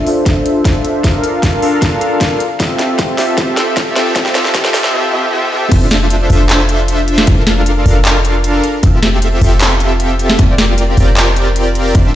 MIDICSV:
0, 0, Header, 1, 4, 480
1, 0, Start_track
1, 0, Key_signature, -1, "major"
1, 0, Tempo, 389610
1, 1281, Time_signature, 4, 2, 24, 8
1, 14969, End_track
2, 0, Start_track
2, 0, Title_t, "Supersaw synth"
2, 0, Program_c, 0, 81
2, 83, Note_on_c, 0, 62, 97
2, 83, Note_on_c, 0, 69, 90
2, 83, Note_on_c, 0, 72, 89
2, 83, Note_on_c, 0, 76, 108
2, 84, Note_on_c, 0, 65, 87
2, 1254, Note_off_c, 0, 62, 0
2, 1255, Note_off_c, 0, 65, 0
2, 1255, Note_off_c, 0, 69, 0
2, 1255, Note_off_c, 0, 72, 0
2, 1255, Note_off_c, 0, 76, 0
2, 1282, Note_on_c, 0, 62, 80
2, 1282, Note_on_c, 0, 65, 75
2, 1282, Note_on_c, 0, 69, 74
2, 1282, Note_on_c, 0, 70, 76
2, 1282, Note_on_c, 0, 77, 90
2, 1974, Note_off_c, 0, 62, 0
2, 1974, Note_off_c, 0, 65, 0
2, 1974, Note_off_c, 0, 69, 0
2, 1974, Note_off_c, 0, 70, 0
2, 1974, Note_off_c, 0, 77, 0
2, 2001, Note_on_c, 0, 62, 97
2, 2001, Note_on_c, 0, 69, 92
2, 2001, Note_on_c, 0, 70, 87
2, 2002, Note_on_c, 0, 65, 88
2, 2002, Note_on_c, 0, 77, 107
2, 2947, Note_off_c, 0, 62, 0
2, 2948, Note_off_c, 0, 65, 0
2, 2948, Note_off_c, 0, 69, 0
2, 2948, Note_off_c, 0, 70, 0
2, 2948, Note_off_c, 0, 77, 0
2, 3203, Note_on_c, 0, 60, 76
2, 3203, Note_on_c, 0, 65, 69
2, 3203, Note_on_c, 0, 67, 69
2, 3203, Note_on_c, 0, 69, 70
2, 3203, Note_on_c, 0, 76, 84
2, 3894, Note_off_c, 0, 60, 0
2, 3895, Note_off_c, 0, 65, 0
2, 3895, Note_off_c, 0, 67, 0
2, 3895, Note_off_c, 0, 69, 0
2, 3895, Note_off_c, 0, 76, 0
2, 3923, Note_on_c, 0, 60, 90
2, 3923, Note_on_c, 0, 65, 82
2, 3923, Note_on_c, 0, 67, 82
2, 3923, Note_on_c, 0, 69, 81
2, 3923, Note_on_c, 0, 76, 100
2, 4144, Note_off_c, 0, 60, 0
2, 4144, Note_off_c, 0, 65, 0
2, 4144, Note_off_c, 0, 67, 0
2, 4144, Note_off_c, 0, 69, 0
2, 4144, Note_off_c, 0, 76, 0
2, 4160, Note_on_c, 0, 69, 68
2, 4161, Note_on_c, 0, 60, 74
2, 4161, Note_on_c, 0, 65, 70
2, 4161, Note_on_c, 0, 67, 69
2, 4161, Note_on_c, 0, 76, 81
2, 4853, Note_off_c, 0, 60, 0
2, 4853, Note_off_c, 0, 65, 0
2, 4853, Note_off_c, 0, 67, 0
2, 4853, Note_off_c, 0, 69, 0
2, 4854, Note_off_c, 0, 76, 0
2, 4881, Note_on_c, 0, 60, 93
2, 4881, Note_on_c, 0, 69, 84
2, 4881, Note_on_c, 0, 76, 101
2, 4882, Note_on_c, 0, 65, 83
2, 4882, Note_on_c, 0, 67, 84
2, 5103, Note_off_c, 0, 60, 0
2, 5103, Note_off_c, 0, 65, 0
2, 5103, Note_off_c, 0, 67, 0
2, 5103, Note_off_c, 0, 69, 0
2, 5103, Note_off_c, 0, 76, 0
2, 5120, Note_on_c, 0, 60, 80
2, 5120, Note_on_c, 0, 69, 73
2, 5120, Note_on_c, 0, 76, 87
2, 5121, Note_on_c, 0, 65, 74
2, 5121, Note_on_c, 0, 67, 75
2, 5582, Note_off_c, 0, 60, 0
2, 5582, Note_off_c, 0, 76, 0
2, 5583, Note_off_c, 0, 65, 0
2, 5583, Note_off_c, 0, 67, 0
2, 5583, Note_off_c, 0, 69, 0
2, 5600, Note_on_c, 0, 76, 93
2, 5601, Note_on_c, 0, 60, 80
2, 5601, Note_on_c, 0, 65, 77
2, 5601, Note_on_c, 0, 67, 77
2, 5601, Note_on_c, 0, 69, 73
2, 6063, Note_off_c, 0, 60, 0
2, 6063, Note_off_c, 0, 65, 0
2, 6063, Note_off_c, 0, 67, 0
2, 6063, Note_off_c, 0, 69, 0
2, 6063, Note_off_c, 0, 76, 0
2, 6081, Note_on_c, 0, 60, 80
2, 6081, Note_on_c, 0, 67, 74
2, 6081, Note_on_c, 0, 69, 73
2, 6082, Note_on_c, 0, 65, 76
2, 6082, Note_on_c, 0, 76, 90
2, 6303, Note_off_c, 0, 60, 0
2, 6303, Note_off_c, 0, 65, 0
2, 6303, Note_off_c, 0, 67, 0
2, 6303, Note_off_c, 0, 69, 0
2, 6303, Note_off_c, 0, 76, 0
2, 6320, Note_on_c, 0, 76, 87
2, 6321, Note_on_c, 0, 60, 81
2, 6321, Note_on_c, 0, 65, 73
2, 6321, Note_on_c, 0, 67, 72
2, 6321, Note_on_c, 0, 69, 70
2, 6543, Note_off_c, 0, 60, 0
2, 6543, Note_off_c, 0, 65, 0
2, 6543, Note_off_c, 0, 67, 0
2, 6543, Note_off_c, 0, 69, 0
2, 6543, Note_off_c, 0, 76, 0
2, 6561, Note_on_c, 0, 60, 82
2, 6561, Note_on_c, 0, 67, 75
2, 6561, Note_on_c, 0, 69, 76
2, 6561, Note_on_c, 0, 76, 92
2, 6562, Note_on_c, 0, 65, 75
2, 6783, Note_off_c, 0, 60, 0
2, 6783, Note_off_c, 0, 65, 0
2, 6783, Note_off_c, 0, 67, 0
2, 6783, Note_off_c, 0, 69, 0
2, 6783, Note_off_c, 0, 76, 0
2, 6800, Note_on_c, 0, 60, 82
2, 6800, Note_on_c, 0, 65, 74
2, 6800, Note_on_c, 0, 67, 73
2, 6800, Note_on_c, 0, 76, 89
2, 6801, Note_on_c, 0, 69, 75
2, 7022, Note_off_c, 0, 60, 0
2, 7022, Note_off_c, 0, 65, 0
2, 7023, Note_off_c, 0, 67, 0
2, 7023, Note_off_c, 0, 69, 0
2, 7023, Note_off_c, 0, 76, 0
2, 7041, Note_on_c, 0, 62, 83
2, 7041, Note_on_c, 0, 65, 74
2, 7041, Note_on_c, 0, 69, 75
2, 7041, Note_on_c, 0, 72, 73
2, 7041, Note_on_c, 0, 76, 92
2, 7734, Note_off_c, 0, 62, 0
2, 7734, Note_off_c, 0, 65, 0
2, 7734, Note_off_c, 0, 69, 0
2, 7734, Note_off_c, 0, 72, 0
2, 7734, Note_off_c, 0, 76, 0
2, 7761, Note_on_c, 0, 62, 99
2, 7761, Note_on_c, 0, 65, 90
2, 7761, Note_on_c, 0, 69, 90
2, 7761, Note_on_c, 0, 72, 90
2, 7761, Note_on_c, 0, 76, 106
2, 8933, Note_off_c, 0, 69, 0
2, 8933, Note_off_c, 0, 72, 0
2, 8933, Note_off_c, 0, 76, 0
2, 8934, Note_off_c, 0, 62, 0
2, 8934, Note_off_c, 0, 65, 0
2, 8961, Note_on_c, 0, 65, 75
2, 8961, Note_on_c, 0, 69, 75
2, 8961, Note_on_c, 0, 70, 76
2, 8961, Note_on_c, 0, 77, 90
2, 8962, Note_on_c, 0, 62, 84
2, 9654, Note_off_c, 0, 62, 0
2, 9654, Note_off_c, 0, 65, 0
2, 9654, Note_off_c, 0, 69, 0
2, 9654, Note_off_c, 0, 70, 0
2, 9654, Note_off_c, 0, 77, 0
2, 9681, Note_on_c, 0, 62, 99
2, 9681, Note_on_c, 0, 65, 90
2, 9681, Note_on_c, 0, 70, 90
2, 9681, Note_on_c, 0, 77, 112
2, 9682, Note_on_c, 0, 69, 89
2, 10628, Note_off_c, 0, 62, 0
2, 10628, Note_off_c, 0, 65, 0
2, 10628, Note_off_c, 0, 69, 0
2, 10628, Note_off_c, 0, 70, 0
2, 10628, Note_off_c, 0, 77, 0
2, 10881, Note_on_c, 0, 60, 81
2, 10881, Note_on_c, 0, 69, 77
2, 10882, Note_on_c, 0, 65, 74
2, 10882, Note_on_c, 0, 67, 77
2, 10882, Note_on_c, 0, 76, 91
2, 11574, Note_off_c, 0, 60, 0
2, 11574, Note_off_c, 0, 65, 0
2, 11574, Note_off_c, 0, 67, 0
2, 11574, Note_off_c, 0, 69, 0
2, 11574, Note_off_c, 0, 76, 0
2, 11601, Note_on_c, 0, 60, 98
2, 11601, Note_on_c, 0, 65, 92
2, 11601, Note_on_c, 0, 67, 92
2, 11601, Note_on_c, 0, 69, 93
2, 11602, Note_on_c, 0, 76, 106
2, 12774, Note_off_c, 0, 60, 0
2, 12774, Note_off_c, 0, 65, 0
2, 12774, Note_off_c, 0, 67, 0
2, 12774, Note_off_c, 0, 69, 0
2, 12774, Note_off_c, 0, 76, 0
2, 12802, Note_on_c, 0, 60, 81
2, 12802, Note_on_c, 0, 65, 77
2, 12802, Note_on_c, 0, 70, 77
2, 12802, Note_on_c, 0, 74, 92
2, 12803, Note_on_c, 0, 67, 76
2, 13494, Note_off_c, 0, 60, 0
2, 13494, Note_off_c, 0, 65, 0
2, 13494, Note_off_c, 0, 67, 0
2, 13494, Note_off_c, 0, 70, 0
2, 13494, Note_off_c, 0, 74, 0
2, 13520, Note_on_c, 0, 60, 102
2, 13520, Note_on_c, 0, 65, 90
2, 13520, Note_on_c, 0, 67, 91
2, 13520, Note_on_c, 0, 70, 90
2, 13520, Note_on_c, 0, 74, 109
2, 14693, Note_off_c, 0, 60, 0
2, 14693, Note_off_c, 0, 65, 0
2, 14693, Note_off_c, 0, 67, 0
2, 14693, Note_off_c, 0, 70, 0
2, 14693, Note_off_c, 0, 74, 0
2, 14721, Note_on_c, 0, 62, 82
2, 14721, Note_on_c, 0, 65, 76
2, 14721, Note_on_c, 0, 69, 77
2, 14721, Note_on_c, 0, 72, 75
2, 14721, Note_on_c, 0, 76, 91
2, 14969, Note_off_c, 0, 62, 0
2, 14969, Note_off_c, 0, 65, 0
2, 14969, Note_off_c, 0, 69, 0
2, 14969, Note_off_c, 0, 72, 0
2, 14969, Note_off_c, 0, 76, 0
2, 14969, End_track
3, 0, Start_track
3, 0, Title_t, "808-style bass"
3, 0, Program_c, 1, 38
3, 7042, Note_on_c, 1, 29, 95
3, 7739, Note_off_c, 1, 29, 0
3, 7762, Note_on_c, 1, 29, 101
3, 8939, Note_off_c, 1, 29, 0
3, 8963, Note_on_c, 1, 29, 95
3, 9659, Note_off_c, 1, 29, 0
3, 9680, Note_on_c, 1, 29, 99
3, 10604, Note_off_c, 1, 29, 0
3, 10881, Note_on_c, 1, 29, 95
3, 11578, Note_off_c, 1, 29, 0
3, 11599, Note_on_c, 1, 29, 101
3, 12777, Note_off_c, 1, 29, 0
3, 12800, Note_on_c, 1, 29, 94
3, 13498, Note_off_c, 1, 29, 0
3, 13522, Note_on_c, 1, 29, 104
3, 14699, Note_off_c, 1, 29, 0
3, 14721, Note_on_c, 1, 29, 96
3, 14969, Note_off_c, 1, 29, 0
3, 14969, End_track
4, 0, Start_track
4, 0, Title_t, "Drums"
4, 81, Note_on_c, 9, 46, 94
4, 205, Note_off_c, 9, 46, 0
4, 322, Note_on_c, 9, 38, 52
4, 322, Note_on_c, 9, 42, 78
4, 323, Note_on_c, 9, 36, 101
4, 445, Note_off_c, 9, 38, 0
4, 445, Note_off_c, 9, 42, 0
4, 446, Note_off_c, 9, 36, 0
4, 563, Note_on_c, 9, 42, 66
4, 686, Note_off_c, 9, 42, 0
4, 802, Note_on_c, 9, 36, 98
4, 803, Note_on_c, 9, 38, 57
4, 803, Note_on_c, 9, 42, 84
4, 925, Note_off_c, 9, 36, 0
4, 926, Note_off_c, 9, 38, 0
4, 926, Note_off_c, 9, 42, 0
4, 1042, Note_on_c, 9, 42, 62
4, 1165, Note_off_c, 9, 42, 0
4, 1282, Note_on_c, 9, 36, 101
4, 1283, Note_on_c, 9, 38, 58
4, 1283, Note_on_c, 9, 42, 80
4, 1405, Note_off_c, 9, 36, 0
4, 1406, Note_off_c, 9, 38, 0
4, 1406, Note_off_c, 9, 42, 0
4, 1522, Note_on_c, 9, 42, 67
4, 1646, Note_off_c, 9, 42, 0
4, 1762, Note_on_c, 9, 36, 97
4, 1762, Note_on_c, 9, 38, 61
4, 1762, Note_on_c, 9, 42, 78
4, 1885, Note_off_c, 9, 36, 0
4, 1885, Note_off_c, 9, 38, 0
4, 1885, Note_off_c, 9, 42, 0
4, 2001, Note_on_c, 9, 46, 91
4, 2124, Note_off_c, 9, 46, 0
4, 2242, Note_on_c, 9, 36, 105
4, 2242, Note_on_c, 9, 38, 63
4, 2242, Note_on_c, 9, 42, 77
4, 2365, Note_off_c, 9, 36, 0
4, 2365, Note_off_c, 9, 38, 0
4, 2365, Note_off_c, 9, 42, 0
4, 2480, Note_on_c, 9, 42, 64
4, 2603, Note_off_c, 9, 42, 0
4, 2721, Note_on_c, 9, 38, 71
4, 2721, Note_on_c, 9, 42, 80
4, 2722, Note_on_c, 9, 36, 97
4, 2844, Note_off_c, 9, 38, 0
4, 2844, Note_off_c, 9, 42, 0
4, 2845, Note_off_c, 9, 36, 0
4, 2961, Note_on_c, 9, 42, 60
4, 3084, Note_off_c, 9, 42, 0
4, 3201, Note_on_c, 9, 38, 73
4, 3201, Note_on_c, 9, 42, 75
4, 3202, Note_on_c, 9, 36, 102
4, 3324, Note_off_c, 9, 38, 0
4, 3324, Note_off_c, 9, 42, 0
4, 3326, Note_off_c, 9, 36, 0
4, 3440, Note_on_c, 9, 38, 76
4, 3440, Note_on_c, 9, 42, 64
4, 3563, Note_off_c, 9, 38, 0
4, 3563, Note_off_c, 9, 42, 0
4, 3679, Note_on_c, 9, 38, 78
4, 3679, Note_on_c, 9, 42, 75
4, 3682, Note_on_c, 9, 36, 100
4, 3802, Note_off_c, 9, 38, 0
4, 3802, Note_off_c, 9, 42, 0
4, 3805, Note_off_c, 9, 36, 0
4, 3919, Note_on_c, 9, 38, 81
4, 3919, Note_on_c, 9, 46, 90
4, 4043, Note_off_c, 9, 38, 0
4, 4043, Note_off_c, 9, 46, 0
4, 4159, Note_on_c, 9, 38, 81
4, 4159, Note_on_c, 9, 42, 75
4, 4162, Note_on_c, 9, 36, 102
4, 4283, Note_off_c, 9, 38, 0
4, 4283, Note_off_c, 9, 42, 0
4, 4285, Note_off_c, 9, 36, 0
4, 4399, Note_on_c, 9, 38, 85
4, 4399, Note_on_c, 9, 42, 63
4, 4523, Note_off_c, 9, 38, 0
4, 4523, Note_off_c, 9, 42, 0
4, 4640, Note_on_c, 9, 38, 86
4, 4640, Note_on_c, 9, 42, 77
4, 4641, Note_on_c, 9, 36, 101
4, 4764, Note_off_c, 9, 36, 0
4, 4764, Note_off_c, 9, 38, 0
4, 4764, Note_off_c, 9, 42, 0
4, 4882, Note_on_c, 9, 38, 87
4, 4882, Note_on_c, 9, 42, 58
4, 5005, Note_off_c, 9, 38, 0
4, 5005, Note_off_c, 9, 42, 0
4, 5121, Note_on_c, 9, 36, 102
4, 5121, Note_on_c, 9, 38, 88
4, 5121, Note_on_c, 9, 42, 73
4, 5244, Note_off_c, 9, 36, 0
4, 5244, Note_off_c, 9, 38, 0
4, 5244, Note_off_c, 9, 42, 0
4, 5244, Note_on_c, 9, 38, 81
4, 5359, Note_off_c, 9, 38, 0
4, 5359, Note_on_c, 9, 38, 96
4, 5359, Note_on_c, 9, 42, 63
4, 5482, Note_off_c, 9, 38, 0
4, 5482, Note_off_c, 9, 42, 0
4, 5484, Note_on_c, 9, 38, 84
4, 5599, Note_off_c, 9, 38, 0
4, 5599, Note_on_c, 9, 38, 96
4, 5599, Note_on_c, 9, 42, 74
4, 5601, Note_on_c, 9, 36, 100
4, 5722, Note_off_c, 9, 38, 0
4, 5722, Note_off_c, 9, 42, 0
4, 5723, Note_on_c, 9, 38, 89
4, 5724, Note_off_c, 9, 36, 0
4, 5839, Note_off_c, 9, 38, 0
4, 5839, Note_on_c, 9, 38, 104
4, 5839, Note_on_c, 9, 46, 94
4, 5962, Note_off_c, 9, 38, 0
4, 5962, Note_off_c, 9, 46, 0
4, 5964, Note_on_c, 9, 38, 85
4, 6087, Note_off_c, 9, 38, 0
4, 7041, Note_on_c, 9, 42, 82
4, 7041, Note_on_c, 9, 49, 103
4, 7042, Note_on_c, 9, 36, 122
4, 7164, Note_off_c, 9, 42, 0
4, 7164, Note_off_c, 9, 49, 0
4, 7165, Note_off_c, 9, 36, 0
4, 7281, Note_on_c, 9, 40, 77
4, 7281, Note_on_c, 9, 42, 70
4, 7405, Note_off_c, 9, 40, 0
4, 7405, Note_off_c, 9, 42, 0
4, 7521, Note_on_c, 9, 42, 82
4, 7644, Note_off_c, 9, 42, 0
4, 7760, Note_on_c, 9, 46, 94
4, 7883, Note_off_c, 9, 46, 0
4, 8002, Note_on_c, 9, 39, 117
4, 8002, Note_on_c, 9, 42, 82
4, 8125, Note_off_c, 9, 39, 0
4, 8125, Note_off_c, 9, 42, 0
4, 8241, Note_on_c, 9, 42, 71
4, 8364, Note_off_c, 9, 42, 0
4, 8480, Note_on_c, 9, 42, 86
4, 8603, Note_off_c, 9, 42, 0
4, 8720, Note_on_c, 9, 42, 62
4, 8844, Note_off_c, 9, 42, 0
4, 8844, Note_on_c, 9, 40, 80
4, 8959, Note_on_c, 9, 42, 80
4, 8962, Note_on_c, 9, 36, 127
4, 8967, Note_off_c, 9, 40, 0
4, 9082, Note_off_c, 9, 42, 0
4, 9086, Note_off_c, 9, 36, 0
4, 9199, Note_on_c, 9, 40, 77
4, 9199, Note_on_c, 9, 42, 68
4, 9322, Note_off_c, 9, 40, 0
4, 9322, Note_off_c, 9, 42, 0
4, 9439, Note_on_c, 9, 42, 82
4, 9563, Note_off_c, 9, 42, 0
4, 9680, Note_on_c, 9, 46, 91
4, 9804, Note_off_c, 9, 46, 0
4, 9920, Note_on_c, 9, 39, 121
4, 9920, Note_on_c, 9, 42, 80
4, 10043, Note_off_c, 9, 39, 0
4, 10043, Note_off_c, 9, 42, 0
4, 10160, Note_on_c, 9, 42, 65
4, 10283, Note_off_c, 9, 42, 0
4, 10399, Note_on_c, 9, 42, 83
4, 10522, Note_off_c, 9, 42, 0
4, 10639, Note_on_c, 9, 42, 64
4, 10763, Note_off_c, 9, 42, 0
4, 10879, Note_on_c, 9, 42, 76
4, 10881, Note_on_c, 9, 36, 127
4, 11002, Note_off_c, 9, 42, 0
4, 11004, Note_off_c, 9, 36, 0
4, 11120, Note_on_c, 9, 40, 81
4, 11120, Note_on_c, 9, 42, 66
4, 11243, Note_off_c, 9, 40, 0
4, 11243, Note_off_c, 9, 42, 0
4, 11359, Note_on_c, 9, 42, 78
4, 11483, Note_off_c, 9, 42, 0
4, 11599, Note_on_c, 9, 46, 93
4, 11722, Note_off_c, 9, 46, 0
4, 11839, Note_on_c, 9, 39, 127
4, 11839, Note_on_c, 9, 42, 78
4, 11962, Note_off_c, 9, 39, 0
4, 11962, Note_off_c, 9, 42, 0
4, 12078, Note_on_c, 9, 42, 65
4, 12201, Note_off_c, 9, 42, 0
4, 12318, Note_on_c, 9, 42, 81
4, 12442, Note_off_c, 9, 42, 0
4, 12559, Note_on_c, 9, 42, 61
4, 12682, Note_off_c, 9, 42, 0
4, 12683, Note_on_c, 9, 40, 80
4, 12798, Note_on_c, 9, 42, 76
4, 12801, Note_on_c, 9, 36, 125
4, 12807, Note_off_c, 9, 40, 0
4, 12921, Note_off_c, 9, 42, 0
4, 12924, Note_off_c, 9, 36, 0
4, 13039, Note_on_c, 9, 40, 81
4, 13039, Note_on_c, 9, 42, 66
4, 13163, Note_off_c, 9, 40, 0
4, 13163, Note_off_c, 9, 42, 0
4, 13279, Note_on_c, 9, 42, 78
4, 13402, Note_off_c, 9, 42, 0
4, 13519, Note_on_c, 9, 46, 92
4, 13642, Note_off_c, 9, 46, 0
4, 13759, Note_on_c, 9, 39, 123
4, 13759, Note_on_c, 9, 42, 76
4, 13882, Note_off_c, 9, 39, 0
4, 13882, Note_off_c, 9, 42, 0
4, 14000, Note_on_c, 9, 42, 63
4, 14124, Note_off_c, 9, 42, 0
4, 14240, Note_on_c, 9, 42, 75
4, 14364, Note_off_c, 9, 42, 0
4, 14480, Note_on_c, 9, 42, 58
4, 14603, Note_off_c, 9, 42, 0
4, 14720, Note_on_c, 9, 42, 77
4, 14721, Note_on_c, 9, 36, 121
4, 14844, Note_off_c, 9, 42, 0
4, 14845, Note_off_c, 9, 36, 0
4, 14969, End_track
0, 0, End_of_file